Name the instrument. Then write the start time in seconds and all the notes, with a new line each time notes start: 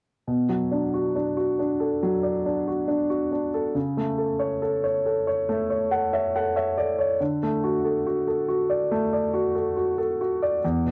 grand piano
0.28 B2
0.49 F#3
0.72 D4
0.94 F#4
1.16 D4
1.37 F#4
1.59 D4
1.80 A4
2.03 F#3
2.23 D5
2.46 D4
2.67 F#4
2.88 D4
3.10 F#4
3.32 D4
3.54 A4
3.75 C#3
3.97 A3
4.18 A4
4.39 C#5
4.62 A4
4.84 C#5
5.06 A4
5.27 C#5
5.49 A3
5.70 C#5
5.91 A4 F#5
6.13 C#5 E5
6.36 A4 F#5
6.56 C#5 E5
6.78 A4 D5
6.99 C#5
7.21 D3
7.43 A3
7.64 F#4
7.85 A4
8.07 F#4
8.27 A4
8.48 F#4
8.70 D5
8.91 A3
9.13 D5
9.34 F#4
9.55 A4
9.77 F#4
9.98 A4
10.21 F#4
10.43 D5
10.65 E2
10.85 B2